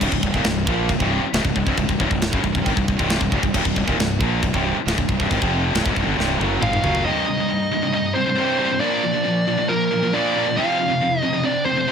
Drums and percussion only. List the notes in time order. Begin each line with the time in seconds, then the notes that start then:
0.01 kick, china, crash
0.12 kick
0.23 kick
0.34 kick
0.44 snare, china
0.67 kick
0.89 kick, china
1.00 kick
1.34 snare, china
1.45 kick
1.56 kick
1.67 kick
1.77 kick, china
1.89 kick
2.00 kick
2.11 kick
2.22 snare, china
2.33 kick
2.44 kick
2.55 kick
2.66 kick, china
2.77 kick
2.88 kick
2.99 kick
3.10 snare, china
3.21 kick
3.32 kick
3.43 kick
3.54 kick, china, crash
3.65 kick
3.76 kick
3.88 kick
4.00 snare, china
4.21 kick
4.43 kick, china
4.54 kick
4.88 snare, china
4.98 kick
5.09 kick
5.20 kick
5.31 kick, china
5.42 kick
5.75 snare, china
5.86 kick
5.96 kick
6.20 snare
6.41 high tom
6.62 mid tom
6.73 mid tom
6.84 floor tom
6.95 floor tom